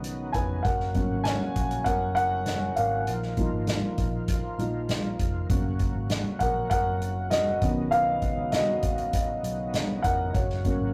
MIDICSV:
0, 0, Header, 1, 5, 480
1, 0, Start_track
1, 0, Key_signature, 6, "major"
1, 0, Tempo, 606673
1, 510, Time_signature, 4, 2, 24, 8
1, 8653, End_track
2, 0, Start_track
2, 0, Title_t, "Upright piano"
2, 0, Program_c, 0, 0
2, 0, Control_c, 0, 64, 127
2, 0, Note_on_c, 0, 51, 48
2, 0, Note_on_c, 0, 59, 42
2, 0, Note_on_c, 0, 61, 53
2, 257, Note_on_c, 0, 80, 78
2, 276, Note_on_c, 0, 71, 65
2, 495, Note_on_c, 0, 78, 73
2, 497, Note_off_c, 0, 71, 0
2, 511, Note_off_c, 0, 80, 0
2, 513, Note_on_c, 0, 70, 56
2, 520, Control_c, 0, 64, 0
2, 521, Note_off_c, 0, 59, 0
2, 524, Note_off_c, 0, 61, 0
2, 525, Note_off_c, 0, 51, 0
2, 660, Control_c, 0, 64, 127
2, 744, Note_on_c, 0, 54, 45
2, 751, Note_on_c, 0, 58, 43
2, 756, Note_on_c, 0, 61, 55
2, 960, Note_off_c, 0, 70, 0
2, 978, Note_on_c, 0, 80, 87
2, 998, Note_off_c, 0, 78, 0
2, 998, Note_on_c, 0, 73, 72
2, 1436, Note_off_c, 0, 54, 0
2, 1439, Note_off_c, 0, 58, 0
2, 1442, Note_off_c, 0, 61, 0
2, 1443, Note_off_c, 0, 73, 0
2, 1459, Note_on_c, 0, 78, 84
2, 1467, Note_on_c, 0, 54, 45
2, 1471, Note_on_c, 0, 58, 39
2, 1475, Note_on_c, 0, 61, 46
2, 1478, Note_on_c, 0, 70, 64
2, 1479, Note_off_c, 0, 80, 0
2, 1685, Note_off_c, 0, 54, 0
2, 1687, Note_off_c, 0, 58, 0
2, 1689, Note_off_c, 0, 61, 0
2, 1689, Note_off_c, 0, 78, 0
2, 1698, Note_off_c, 0, 70, 0
2, 1701, Note_on_c, 0, 78, 102
2, 1717, Note_on_c, 0, 70, 61
2, 2162, Note_off_c, 0, 70, 0
2, 2182, Note_on_c, 0, 77, 68
2, 2198, Note_on_c, 0, 70, 52
2, 2200, Note_off_c, 0, 78, 0
2, 2441, Control_c, 0, 64, 0
2, 2582, Control_c, 0, 64, 127
2, 2665, Note_on_c, 0, 53, 49
2, 2669, Note_on_c, 0, 58, 42
2, 2676, Note_on_c, 0, 63, 51
2, 3356, Note_off_c, 0, 53, 0
2, 3358, Note_off_c, 0, 58, 0
2, 3361, Note_off_c, 0, 63, 0
2, 3595, Note_off_c, 0, 77, 0
2, 3602, Note_off_c, 0, 70, 0
2, 3630, Note_on_c, 0, 53, 45
2, 3635, Note_on_c, 0, 58, 38
2, 3635, Note_on_c, 0, 63, 50
2, 3846, Note_off_c, 0, 53, 0
2, 3849, Note_off_c, 0, 58, 0
2, 3849, Note_off_c, 0, 63, 0
2, 4347, Note_on_c, 0, 54, 36
2, 4350, Note_on_c, 0, 58, 37
2, 4356, Note_on_c, 0, 61, 44
2, 4361, Control_c, 0, 64, 0
2, 4474, Control_c, 0, 64, 127
2, 4668, Note_off_c, 0, 54, 0
2, 4669, Note_off_c, 0, 58, 0
2, 4672, Note_off_c, 0, 61, 0
2, 5057, Note_on_c, 0, 78, 79
2, 5077, Note_on_c, 0, 70, 62
2, 5288, Note_off_c, 0, 78, 0
2, 5297, Note_off_c, 0, 70, 0
2, 5300, Note_on_c, 0, 78, 89
2, 5317, Note_on_c, 0, 70, 73
2, 5761, Note_off_c, 0, 70, 0
2, 5779, Note_on_c, 0, 75, 75
2, 5798, Note_on_c, 0, 66, 58
2, 5799, Note_off_c, 0, 78, 0
2, 6024, Note_on_c, 0, 51, 46
2, 6029, Note_on_c, 0, 59, 43
2, 6034, Note_on_c, 0, 61, 50
2, 6041, Control_c, 0, 64, 0
2, 6182, Control_c, 0, 64, 127
2, 6242, Note_off_c, 0, 66, 0
2, 6258, Note_on_c, 0, 77, 83
2, 6274, Note_on_c, 0, 71, 55
2, 6278, Note_off_c, 0, 75, 0
2, 6711, Note_off_c, 0, 77, 0
2, 6720, Note_off_c, 0, 71, 0
2, 6742, Note_on_c, 0, 75, 78
2, 6757, Note_on_c, 0, 66, 70
2, 7913, Note_off_c, 0, 51, 0
2, 7916, Note_off_c, 0, 59, 0
2, 7918, Note_off_c, 0, 61, 0
2, 7920, Note_off_c, 0, 66, 0
2, 7932, Note_on_c, 0, 78, 82
2, 7948, Note_on_c, 0, 70, 64
2, 7980, Note_off_c, 0, 75, 0
2, 8171, Note_off_c, 0, 70, 0
2, 8172, Note_on_c, 0, 73, 64
2, 8187, Note_off_c, 0, 78, 0
2, 8187, Note_on_c, 0, 66, 51
2, 8198, Control_c, 0, 64, 0
2, 8327, Control_c, 0, 64, 127
2, 8420, Note_on_c, 0, 54, 51
2, 8425, Note_on_c, 0, 58, 47
2, 8431, Note_on_c, 0, 61, 54
2, 8635, Note_off_c, 0, 66, 0
2, 8653, Note_off_c, 0, 54, 0
2, 8653, Note_off_c, 0, 58, 0
2, 8653, Note_off_c, 0, 61, 0
2, 8653, Note_off_c, 0, 73, 0
2, 8653, End_track
3, 0, Start_track
3, 0, Title_t, "Tonewheel organ"
3, 0, Program_c, 1, 16
3, 0, Note_on_c, 1, 49, 52
3, 0, Note_on_c, 1, 54, 48
3, 0, Note_on_c, 1, 59, 56
3, 0, Note_on_c, 1, 63, 63
3, 477, Note_off_c, 1, 49, 0
3, 488, Note_off_c, 1, 63, 0
3, 489, Note_off_c, 1, 59, 0
3, 520, Note_on_c, 1, 66, 65
3, 521, Note_on_c, 1, 49, 56
3, 522, Note_on_c, 1, 58, 51
3, 2399, Note_off_c, 1, 54, 0
3, 2416, Note_off_c, 1, 66, 0
3, 2417, Note_off_c, 1, 49, 0
3, 2417, Note_off_c, 1, 58, 0
3, 2431, Note_on_c, 1, 53, 46
3, 2432, Note_on_c, 1, 51, 53
3, 2433, Note_on_c, 1, 65, 59
3, 2434, Note_on_c, 1, 58, 53
3, 4331, Note_off_c, 1, 53, 0
3, 4332, Note_off_c, 1, 51, 0
3, 4332, Note_off_c, 1, 65, 0
3, 4348, Note_on_c, 1, 66, 61
3, 4349, Note_on_c, 1, 49, 55
3, 4350, Note_on_c, 1, 54, 51
3, 5999, Note_off_c, 1, 58, 0
3, 6012, Note_off_c, 1, 54, 0
3, 6012, Note_off_c, 1, 66, 0
3, 6023, Note_on_c, 1, 54, 55
3, 6024, Note_on_c, 1, 59, 53
3, 6026, Note_on_c, 1, 63, 67
3, 8155, Note_off_c, 1, 49, 0
3, 8163, Note_off_c, 1, 59, 0
3, 8164, Note_off_c, 1, 63, 0
3, 8184, Note_on_c, 1, 49, 58
3, 8184, Note_on_c, 1, 58, 53
3, 8184, Note_on_c, 1, 66, 67
3, 8653, Note_off_c, 1, 49, 0
3, 8653, Note_off_c, 1, 54, 0
3, 8653, Note_off_c, 1, 58, 0
3, 8653, Note_off_c, 1, 66, 0
3, 8653, End_track
4, 0, Start_track
4, 0, Title_t, "Fingered electric bass"
4, 0, Program_c, 2, 33
4, 0, Note_on_c, 2, 35, 77
4, 239, Note_off_c, 2, 35, 0
4, 272, Note_on_c, 2, 29, 67
4, 495, Note_off_c, 2, 29, 0
4, 513, Note_on_c, 2, 30, 86
4, 847, Note_off_c, 2, 30, 0
4, 872, Note_on_c, 2, 32, 74
4, 1095, Note_off_c, 2, 32, 0
4, 1235, Note_on_c, 2, 34, 76
4, 1456, Note_off_c, 2, 34, 0
4, 1472, Note_on_c, 2, 30, 84
4, 2160, Note_off_c, 2, 30, 0
4, 2196, Note_on_c, 2, 32, 72
4, 2417, Note_off_c, 2, 32, 0
4, 2433, Note_on_c, 2, 34, 92
4, 2767, Note_off_c, 2, 34, 0
4, 2792, Note_on_c, 2, 32, 68
4, 3015, Note_off_c, 2, 32, 0
4, 3150, Note_on_c, 2, 34, 79
4, 3485, Note_off_c, 2, 34, 0
4, 3626, Note_on_c, 2, 34, 72
4, 4077, Note_off_c, 2, 34, 0
4, 4113, Note_on_c, 2, 29, 67
4, 4335, Note_off_c, 2, 29, 0
4, 4350, Note_on_c, 2, 30, 82
4, 4685, Note_off_c, 2, 30, 0
4, 4710, Note_on_c, 2, 32, 73
4, 4933, Note_off_c, 2, 32, 0
4, 5070, Note_on_c, 2, 34, 75
4, 5293, Note_off_c, 2, 34, 0
4, 5309, Note_on_c, 2, 30, 87
4, 5997, Note_off_c, 2, 30, 0
4, 6029, Note_on_c, 2, 35, 73
4, 6252, Note_off_c, 2, 35, 0
4, 6266, Note_on_c, 2, 35, 92
4, 6602, Note_off_c, 2, 35, 0
4, 6626, Note_on_c, 2, 37, 75
4, 6850, Note_off_c, 2, 37, 0
4, 6989, Note_on_c, 2, 37, 80
4, 7323, Note_off_c, 2, 37, 0
4, 7462, Note_on_c, 2, 35, 73
4, 7913, Note_off_c, 2, 35, 0
4, 7947, Note_on_c, 2, 29, 72
4, 8170, Note_off_c, 2, 29, 0
4, 8186, Note_on_c, 2, 30, 91
4, 8521, Note_off_c, 2, 30, 0
4, 8543, Note_on_c, 2, 32, 79
4, 8653, Note_off_c, 2, 32, 0
4, 8653, End_track
5, 0, Start_track
5, 0, Title_t, "Drums"
5, 30, Note_on_c, 9, 42, 79
5, 109, Note_off_c, 9, 42, 0
5, 270, Note_on_c, 9, 42, 71
5, 273, Note_on_c, 9, 36, 74
5, 349, Note_off_c, 9, 42, 0
5, 352, Note_off_c, 9, 36, 0
5, 513, Note_on_c, 9, 36, 97
5, 513, Note_on_c, 9, 42, 70
5, 592, Note_off_c, 9, 36, 0
5, 592, Note_off_c, 9, 42, 0
5, 631, Note_on_c, 9, 38, 32
5, 710, Note_off_c, 9, 38, 0
5, 746, Note_on_c, 9, 42, 43
5, 752, Note_on_c, 9, 36, 66
5, 825, Note_off_c, 9, 42, 0
5, 831, Note_off_c, 9, 36, 0
5, 989, Note_on_c, 9, 42, 82
5, 993, Note_on_c, 9, 38, 95
5, 1068, Note_off_c, 9, 42, 0
5, 1072, Note_off_c, 9, 38, 0
5, 1232, Note_on_c, 9, 42, 64
5, 1234, Note_on_c, 9, 36, 73
5, 1311, Note_off_c, 9, 42, 0
5, 1313, Note_off_c, 9, 36, 0
5, 1351, Note_on_c, 9, 42, 43
5, 1430, Note_off_c, 9, 42, 0
5, 1469, Note_on_c, 9, 42, 95
5, 1471, Note_on_c, 9, 36, 75
5, 1548, Note_off_c, 9, 42, 0
5, 1551, Note_off_c, 9, 36, 0
5, 1712, Note_on_c, 9, 42, 63
5, 1791, Note_off_c, 9, 42, 0
5, 1945, Note_on_c, 9, 42, 81
5, 1948, Note_on_c, 9, 38, 82
5, 2024, Note_off_c, 9, 42, 0
5, 2028, Note_off_c, 9, 38, 0
5, 2187, Note_on_c, 9, 42, 68
5, 2266, Note_off_c, 9, 42, 0
5, 2429, Note_on_c, 9, 42, 73
5, 2508, Note_off_c, 9, 42, 0
5, 2549, Note_on_c, 9, 38, 31
5, 2628, Note_off_c, 9, 38, 0
5, 2665, Note_on_c, 9, 42, 46
5, 2669, Note_on_c, 9, 36, 70
5, 2744, Note_off_c, 9, 42, 0
5, 2748, Note_off_c, 9, 36, 0
5, 2904, Note_on_c, 9, 42, 81
5, 2909, Note_on_c, 9, 38, 95
5, 2984, Note_off_c, 9, 42, 0
5, 2988, Note_off_c, 9, 38, 0
5, 3146, Note_on_c, 9, 42, 64
5, 3150, Note_on_c, 9, 36, 75
5, 3225, Note_off_c, 9, 42, 0
5, 3229, Note_off_c, 9, 36, 0
5, 3385, Note_on_c, 9, 42, 95
5, 3389, Note_on_c, 9, 36, 72
5, 3465, Note_off_c, 9, 42, 0
5, 3468, Note_off_c, 9, 36, 0
5, 3634, Note_on_c, 9, 42, 61
5, 3713, Note_off_c, 9, 42, 0
5, 3868, Note_on_c, 9, 42, 79
5, 3872, Note_on_c, 9, 38, 92
5, 3947, Note_off_c, 9, 42, 0
5, 3951, Note_off_c, 9, 38, 0
5, 4109, Note_on_c, 9, 42, 71
5, 4110, Note_on_c, 9, 36, 74
5, 4188, Note_off_c, 9, 42, 0
5, 4189, Note_off_c, 9, 36, 0
5, 4349, Note_on_c, 9, 36, 101
5, 4350, Note_on_c, 9, 42, 69
5, 4428, Note_off_c, 9, 36, 0
5, 4429, Note_off_c, 9, 42, 0
5, 4582, Note_on_c, 9, 42, 45
5, 4588, Note_on_c, 9, 36, 73
5, 4661, Note_off_c, 9, 42, 0
5, 4667, Note_off_c, 9, 36, 0
5, 4823, Note_on_c, 9, 42, 71
5, 4827, Note_on_c, 9, 38, 94
5, 4902, Note_off_c, 9, 42, 0
5, 4906, Note_off_c, 9, 38, 0
5, 5065, Note_on_c, 9, 42, 61
5, 5070, Note_on_c, 9, 36, 75
5, 5144, Note_off_c, 9, 42, 0
5, 5149, Note_off_c, 9, 36, 0
5, 5306, Note_on_c, 9, 42, 89
5, 5309, Note_on_c, 9, 36, 79
5, 5385, Note_off_c, 9, 42, 0
5, 5388, Note_off_c, 9, 36, 0
5, 5551, Note_on_c, 9, 42, 62
5, 5630, Note_off_c, 9, 42, 0
5, 5783, Note_on_c, 9, 42, 83
5, 5787, Note_on_c, 9, 38, 84
5, 5862, Note_off_c, 9, 42, 0
5, 5866, Note_off_c, 9, 38, 0
5, 6026, Note_on_c, 9, 42, 75
5, 6027, Note_on_c, 9, 36, 86
5, 6105, Note_off_c, 9, 42, 0
5, 6106, Note_off_c, 9, 36, 0
5, 6265, Note_on_c, 9, 42, 73
5, 6344, Note_off_c, 9, 42, 0
5, 6501, Note_on_c, 9, 42, 46
5, 6505, Note_on_c, 9, 36, 70
5, 6580, Note_off_c, 9, 42, 0
5, 6584, Note_off_c, 9, 36, 0
5, 6741, Note_on_c, 9, 42, 77
5, 6745, Note_on_c, 9, 38, 96
5, 6820, Note_off_c, 9, 42, 0
5, 6824, Note_off_c, 9, 38, 0
5, 6982, Note_on_c, 9, 42, 63
5, 6987, Note_on_c, 9, 36, 76
5, 7061, Note_off_c, 9, 42, 0
5, 7066, Note_off_c, 9, 36, 0
5, 7103, Note_on_c, 9, 42, 42
5, 7182, Note_off_c, 9, 42, 0
5, 7224, Note_on_c, 9, 42, 94
5, 7226, Note_on_c, 9, 36, 79
5, 7303, Note_off_c, 9, 42, 0
5, 7306, Note_off_c, 9, 36, 0
5, 7469, Note_on_c, 9, 42, 67
5, 7548, Note_off_c, 9, 42, 0
5, 7703, Note_on_c, 9, 42, 78
5, 7707, Note_on_c, 9, 38, 91
5, 7782, Note_off_c, 9, 42, 0
5, 7786, Note_off_c, 9, 38, 0
5, 7945, Note_on_c, 9, 42, 69
5, 7946, Note_on_c, 9, 36, 83
5, 8024, Note_off_c, 9, 42, 0
5, 8025, Note_off_c, 9, 36, 0
5, 8185, Note_on_c, 9, 36, 96
5, 8186, Note_on_c, 9, 42, 67
5, 8264, Note_off_c, 9, 36, 0
5, 8265, Note_off_c, 9, 42, 0
5, 8304, Note_on_c, 9, 38, 34
5, 8383, Note_off_c, 9, 38, 0
5, 8422, Note_on_c, 9, 42, 50
5, 8425, Note_on_c, 9, 36, 69
5, 8501, Note_off_c, 9, 42, 0
5, 8504, Note_off_c, 9, 36, 0
5, 8653, End_track
0, 0, End_of_file